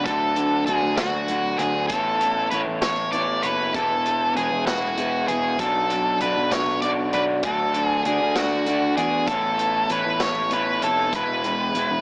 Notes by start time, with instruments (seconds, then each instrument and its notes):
0.04 picked electric bass D2, clean electric guitar D3 F#3 A3 D4 F#4, lead electric guitar A4, kick, closed hi-hat
0.35 clean electric guitar A3 D4 F#4, closed hi-hat
0.66 picked electric bass D2, clean electric guitar F#3 A3 D4 F#4, lead electric guitar G#4, closed hi-hat
0.82 picked electric bass D2
0.97 clean electric guitar A3 D4 F#4, lead electric guitar F#4, kick, snare, closed hi-hat
1.27 clean electric guitar F#3 A3 D4 F#4, closed hi-hat
1.57 picked electric bass D2, clean electric guitar D4 F#4, lead electric guitar G#4, closed hi-hat
1.62 clean electric guitar A3
1.87 picked electric bass A1, clean electric guitar A3 B3 E4, lead electric guitar A4, kick, closed hi-hat
1.92 clean electric guitar A4 C#5
2.20 clean electric guitar E4 A4 C#5, closed hi-hat
2.50 picked electric bass A1, clean electric guitar B3 E4 A4 C#5, lead electric guitar B4, closed hi-hat
2.67 picked electric bass A1
2.81 clean electric guitar E4 A4 C#5, lead electric guitar C#5, kick, snare, closed hi-hat
3.12 clean electric guitar B3 E4 A4 C#5, lead electric guitar D5, closed hi-hat
3.43 picked electric bass F#1, clean electric guitar A4 C#5, lead electric guitar B4, closed hi-hat
3.47 clean electric guitar E4
3.74 picked electric bass E1, clean electric guitar E3 B3 E4 G#4 B4, lead electric guitar A4, kick, closed hi-hat
4.05 clean electric guitar E4 G#4 B4, closed hi-hat
4.35 picked electric bass E1, clean electric guitar B3 E4 G#4 B4, lead electric guitar G#4, closed hi-hat
4.52 picked electric bass E1
4.66 clean electric guitar E4 G#4 B4, lead electric guitar F#4, kick, snare, closed hi-hat
4.97 clean electric guitar B3 E4 G#4 B4, closed hi-hat
5.28 picked electric bass E1, clean electric guitar E4 G#4 B4, lead electric guitar G#4, closed hi-hat
5.58 picked electric bass B1, clean electric guitar B2 F#3 B3 D4 F#4 D5, lead electric guitar A4, kick, closed hi-hat
5.89 clean electric guitar B3 D4 F#4 D5, closed hi-hat
6.20 picked electric bass B1, clean electric guitar B3 D4 F#4 D5, lead electric guitar B4, closed hi-hat
6.37 picked electric bass B1
6.50 clean electric guitar B3 D4 F#4 D5, lead electric guitar C#5, kick, snare, closed hi-hat
6.82 clean electric guitar B3 D4 F#4 D5, lead electric guitar D5, closed hi-hat
7.13 picked electric bass B1, clean electric guitar B3 D4 F#4 D5, lead electric guitar B4, closed hi-hat
7.43 picked electric bass D2, clean electric guitar D3 F#3 A3 D4 F#4 D5, lead electric guitar A4, kick, closed hi-hat
7.74 clean electric guitar A3 D4 F#4 D5, closed hi-hat
7.86 lead electric guitar G#4
8.04 picked electric bass D2, clean electric guitar A3 D4 F#4 D5, lead electric guitar G#4, closed hi-hat
8.21 picked electric bass D2
8.35 clean electric guitar A3 D4 F#4 D5, lead electric guitar F#4, kick, snare, closed hi-hat
8.66 clean electric guitar A3 D4 F#4 D5, closed hi-hat
8.97 picked electric bass E2, clean electric guitar A3 D4 F#4 D5, lead electric guitar G#4, closed hi-hat
9.27 picked electric bass A1, clean electric guitar A3 B3 E4 A4 C#5, lead electric guitar A4, kick, closed hi-hat
9.58 clean electric guitar E4 A4 C#5, closed hi-hat
9.89 picked electric bass A1, clean electric guitar B3 E4 A4 C#5, lead electric guitar B4, closed hi-hat
10.05 picked electric bass A1
10.20 clean electric guitar A4 C#5, lead electric guitar C#5, kick, snare, closed hi-hat
10.24 clean electric guitar E4
10.51 clean electric guitar B3 E4 A4 C#5, lead electric guitar B4, closed hi-hat
10.82 picked electric bass F1, clean electric guitar E4 A4 C#5, lead electric guitar A4, closed hi-hat
11.12 picked electric bass E1, clean electric guitar E3 G#3 B3 E4 G#4, lead electric guitar B4, kick, closed hi-hat
11.43 clean electric guitar B3 E4 G#4, closed hi-hat
11.74 picked electric bass E1, clean electric guitar G#3 B3 E4 G#4, closed hi-hat
11.91 picked electric bass E1